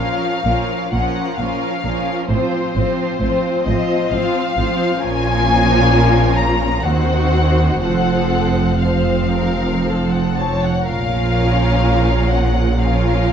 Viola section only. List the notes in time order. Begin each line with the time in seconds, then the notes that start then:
Already playing: F3 C#4
0.45 F3 C#4
0.93 F3 C#4
1.39 F3 C#4
1.84 F3 C#4
2.30 F3 C4
2.76 F3 C4
3.21 F3 C4
3.67 F3 C4
4.11 F3 C4
4.57 F3 C4
5.02 F3 C#4
6.85 D#3 C4
7.83 F3 C4
8.83 F3 C4
10.89 F3 C#4
12.78 F3 C#4